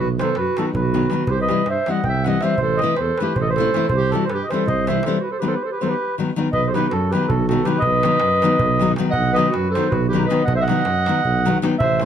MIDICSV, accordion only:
0, 0, Header, 1, 2, 480
1, 0, Start_track
1, 0, Tempo, 375235
1, 1641, Time_signature, 7, 3, 24, 8
1, 15416, End_track
2, 0, Start_track
2, 0, Title_t, "Accordion"
2, 0, Program_c, 0, 21
2, 248, Note_on_c, 0, 72, 100
2, 452, Note_off_c, 0, 72, 0
2, 473, Note_on_c, 0, 71, 91
2, 720, Note_off_c, 0, 71, 0
2, 743, Note_on_c, 0, 69, 79
2, 841, Note_off_c, 0, 69, 0
2, 967, Note_on_c, 0, 71, 78
2, 1657, Note_on_c, 0, 72, 87
2, 1666, Note_off_c, 0, 71, 0
2, 1788, Note_off_c, 0, 72, 0
2, 1807, Note_on_c, 0, 75, 91
2, 2162, Note_off_c, 0, 75, 0
2, 2168, Note_on_c, 0, 76, 82
2, 2418, Note_on_c, 0, 78, 88
2, 2430, Note_off_c, 0, 76, 0
2, 2609, Note_on_c, 0, 79, 91
2, 2621, Note_off_c, 0, 78, 0
2, 2851, Note_off_c, 0, 79, 0
2, 2859, Note_on_c, 0, 78, 82
2, 3078, Note_on_c, 0, 76, 88
2, 3093, Note_off_c, 0, 78, 0
2, 3293, Note_on_c, 0, 72, 95
2, 3312, Note_off_c, 0, 76, 0
2, 3547, Note_on_c, 0, 75, 109
2, 3583, Note_off_c, 0, 72, 0
2, 3773, Note_off_c, 0, 75, 0
2, 3783, Note_on_c, 0, 72, 89
2, 4055, Note_on_c, 0, 71, 83
2, 4076, Note_off_c, 0, 72, 0
2, 4282, Note_on_c, 0, 72, 78
2, 4299, Note_off_c, 0, 71, 0
2, 4369, Note_on_c, 0, 75, 67
2, 4379, Note_off_c, 0, 72, 0
2, 4473, Note_on_c, 0, 72, 98
2, 4476, Note_off_c, 0, 75, 0
2, 4945, Note_off_c, 0, 72, 0
2, 4971, Note_on_c, 0, 72, 99
2, 5253, Note_on_c, 0, 69, 97
2, 5259, Note_off_c, 0, 72, 0
2, 5430, Note_off_c, 0, 69, 0
2, 5436, Note_on_c, 0, 72, 61
2, 5478, Note_on_c, 0, 71, 84
2, 5488, Note_off_c, 0, 72, 0
2, 5670, Note_off_c, 0, 71, 0
2, 5671, Note_on_c, 0, 75, 59
2, 5747, Note_off_c, 0, 75, 0
2, 5754, Note_on_c, 0, 72, 93
2, 5970, Note_on_c, 0, 75, 96
2, 5986, Note_off_c, 0, 72, 0
2, 6232, Note_off_c, 0, 75, 0
2, 6245, Note_on_c, 0, 76, 80
2, 6461, Note_off_c, 0, 76, 0
2, 6464, Note_on_c, 0, 72, 74
2, 6680, Note_off_c, 0, 72, 0
2, 6680, Note_on_c, 0, 71, 69
2, 6789, Note_off_c, 0, 71, 0
2, 6800, Note_on_c, 0, 72, 76
2, 6907, Note_off_c, 0, 72, 0
2, 6908, Note_on_c, 0, 71, 64
2, 6997, Note_on_c, 0, 72, 87
2, 7006, Note_off_c, 0, 71, 0
2, 7083, Note_on_c, 0, 71, 69
2, 7095, Note_off_c, 0, 72, 0
2, 7180, Note_on_c, 0, 72, 62
2, 7194, Note_off_c, 0, 71, 0
2, 7307, Note_off_c, 0, 72, 0
2, 7309, Note_on_c, 0, 71, 62
2, 7423, Note_on_c, 0, 72, 75
2, 7429, Note_off_c, 0, 71, 0
2, 7515, Note_on_c, 0, 71, 87
2, 7525, Note_off_c, 0, 72, 0
2, 7872, Note_off_c, 0, 71, 0
2, 8345, Note_on_c, 0, 75, 106
2, 8536, Note_on_c, 0, 72, 61
2, 8554, Note_off_c, 0, 75, 0
2, 8609, Note_off_c, 0, 72, 0
2, 8622, Note_on_c, 0, 71, 106
2, 8850, Note_off_c, 0, 71, 0
2, 8852, Note_on_c, 0, 69, 80
2, 9099, Note_off_c, 0, 69, 0
2, 9099, Note_on_c, 0, 71, 88
2, 9312, Note_on_c, 0, 69, 80
2, 9337, Note_off_c, 0, 71, 0
2, 9550, Note_off_c, 0, 69, 0
2, 9569, Note_on_c, 0, 69, 73
2, 9776, Note_on_c, 0, 71, 82
2, 9803, Note_off_c, 0, 69, 0
2, 9965, Note_on_c, 0, 75, 106
2, 10016, Note_off_c, 0, 71, 0
2, 11409, Note_off_c, 0, 75, 0
2, 11666, Note_on_c, 0, 78, 127
2, 11948, Note_on_c, 0, 75, 119
2, 11969, Note_off_c, 0, 78, 0
2, 12170, Note_on_c, 0, 71, 89
2, 12199, Note_off_c, 0, 75, 0
2, 12442, Note_off_c, 0, 71, 0
2, 12454, Note_on_c, 0, 72, 96
2, 12660, Note_on_c, 0, 71, 86
2, 12701, Note_off_c, 0, 72, 0
2, 12884, Note_off_c, 0, 71, 0
2, 12904, Note_on_c, 0, 71, 69
2, 13134, Note_off_c, 0, 71, 0
2, 13138, Note_on_c, 0, 75, 75
2, 13361, Note_off_c, 0, 75, 0
2, 13364, Note_on_c, 0, 78, 102
2, 13475, Note_off_c, 0, 78, 0
2, 13511, Note_on_c, 0, 76, 82
2, 13586, Note_on_c, 0, 78, 126
2, 13608, Note_off_c, 0, 76, 0
2, 14810, Note_off_c, 0, 78, 0
2, 15080, Note_on_c, 0, 76, 116
2, 15366, Note_off_c, 0, 76, 0
2, 15366, Note_on_c, 0, 72, 101
2, 15416, Note_off_c, 0, 72, 0
2, 15416, End_track
0, 0, End_of_file